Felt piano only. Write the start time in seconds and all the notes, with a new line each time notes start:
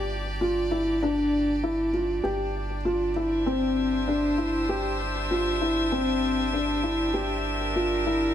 Already playing: G4
0.41 F4
0.71 E4
1.02 D4
1.63 E4
1.93 F4
2.23 G4
2.85 F4
3.16 E4
3.46 C4
4.08 D4
4.38 E4
4.69 G4
5.31 F4
5.61 E4
5.92 C4
6.53 D4
6.84 E4
7.14 G4
7.76 F4
8.07 E4